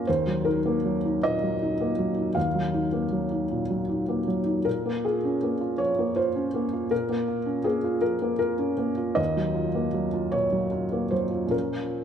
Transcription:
Already playing: F3 A#3 F4
0.07 D#2 C5
0.27 F#3
0.45 D#4 A#4
0.66 A#3
0.85 F#3
1.05 D#4
1.23 A#2 D#5
1.43 F#3
1.62 D#4
1.81 A#3
1.99 F#3
2.17 D#4
2.35 D#2 F5
2.54 F#3
2.74 D#4
2.92 A#3
3.12 F#3
3.31 D#4
3.52 A#2
3.70 F#3
3.89 D#4
4.09 A#3
4.28 F#3
4.46 D#4
4.65 A#2 A#4
4.86 A#3
5.05 F4 G#4
5.25 C#4
5.43 A#3
5.61 F4
5.78 F3 C#5
5.99 A#3
6.16 F4 C5
6.36 C#4
6.54 A#3
6.73 F4
6.91 A#2 A#4
7.09 A#3
7.28 F4
7.46 C#4
7.64 A#3 G#4
7.84 F4
8.01 F3 A#4
8.22 A#3
8.39 F4 A#4
8.59 C#4
8.78 A#3
8.97 F4
9.15 D#2 D#5
9.37 F#3
9.55 F4
9.75 A#3
9.94 F#3
10.13 F4
10.32 A#2 C#5
10.52 F#3
10.71 F4
10.92 A#3
11.11 F#3 C5
11.31 F4
11.47 A#2 F3 C#4 F4 A#4

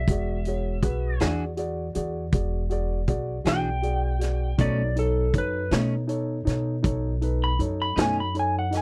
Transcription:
Already playing: E5
0.08 E1 F#4 G#4 D5, kick, closed hi-hat
0.45 F#4 G#4 C#5, closed hi-hat
0.82 B1 F#4 G#4 B4, kick, closed hi-hat
1.20 E2 E3 D4 F#4 G#4 D5, snare, closed hi-hat
1.57 F#4 G#4 D5, closed hi-hat
1.95 E2 F#4 G#4 D5, closed hi-hat
2.32 E1 F#4 G#4 D5, kick, closed hi-hat
2.70 F#4 G#4 D5, closed hi-hat
3.07 B1 F#4 G#4 D5, kick, closed hi-hat
3.44 B1 E3 D4 F#4 G#4 D5, snare, closed hi-hat
3.48 G5
3.82 F#4 G#4 D5, closed hi-hat
4.19 F#4 G#4 D5, snare, closed hi-hat
4.58 B1 B2 A3 C#4 D#4 A4 C#5 D5, kick, closed hi-hat
4.96 D#4 A4 C#5, closed hi-hat
5.33 F#2 D#4 A4 C#5, kick, closed hi-hat
5.38 B4
5.71 B2 A3 C#4 D#4 A4 C#5, snare, closed hi-hat
6.07 D#4 A4 C#5, closed hi-hat
6.45 B2 D#4 A4 C#5, snare, closed hi-hat
6.83 B1 D#4 A4 C#5, kick, closed hi-hat
7.21 D#4 A4 B4, closed hi-hat
7.44 B5
7.59 F#2 D#4 A4 C#5, closed hi-hat
7.82 B5
7.96 F#2 B2 A3 C#4 D#4 A4 C#5, snare, closed hi-hat
8.02 G#5
8.20 B5
8.34 D#4 A4 C#5, closed hi-hat
8.39 G#5
8.59 F#5
8.71 D#4 A4 D#5, snare, closed hi-hat
8.77 G#5

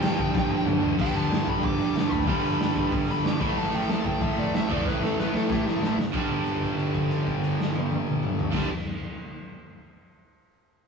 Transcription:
Already playing: G2 D3 G3 D4 G5
0.01 G1 G2 D3 G3, snare, crash
0.18 G1 G2 D3 G3, kick
0.34 G1 G2 D3 G3, kick, snare
0.50 G1 G2 D3 G3
0.66 G1 G2 D3 G3, mid tom
0.82 G1 G2 D3 G3, floor tom
0.98 G1 G2 D3 G3 G5, kick, crash
1.14 G1 A5, open hi-hat
1.29 G1, snare, open hi-hat
1.47 G1 B5, kick, open hi-hat
1.63 G1 D6, kick, open hi-hat
1.78 G2 D3 G3, open hi-hat
1.95 G1 G2 D3 G3, snare, open hi-hat
2.11 D2 B5, kick, open hi-hat
2.26 G1 G2 D3 G3 B5, kick, open hi-hat
2.43 G1, open hi-hat
2.60 G1, snare, open hi-hat
2.76 G2, kick, open hi-hat
2.92 G2, kick, open hi-hat
3.07 G1 G2 D3 G3, open hi-hat
3.11 B5
3.23 G1 G2 D3 G3 D6, snare, open hi-hat
3.39 A1 A2 E3 A3 B5, kick, open hi-hat
3.56 A1 A5, open hi-hat
3.72 A1 G5, open hi-hat
3.87 A1 A5, snare, open hi-hat
4.04 A1 G5, kick, open hi-hat
4.20 A1 A2 E3 A3 E5, kick, open hi-hat
4.36 A2 E3 A3 D5, open hi-hat
4.52 A1 E5, snare, open hi-hat
4.67 E1 A2 E3 A3, kick, open hi-hat
4.72 D5
4.86 A1 B4, kick, snare
5.01 A1 A4, snare
5.17 A1 B4, snare
5.32 A2 A4, snare
5.49 A2 E3 A3 G4, kick, snare
5.64 A1 E3 A3 E4, snare
5.69 A2
5.81 A1 E4, snare
5.97 F#1, snare
6.14 G1 G2 D3, kick, crash
6.18 G3
6.30 kick, crash
6.46 crash
6.62 kick, crash
6.79 crash
6.95 kick, crash
7.11 crash
7.27 kick, crash
7.44 crash
7.60 snare
7.75 high tom
7.91 high tom
8.07 mid tom
8.23 mid tom
8.39 floor tom
8.51 G1 G2 D3 G3, kick, snare, crash

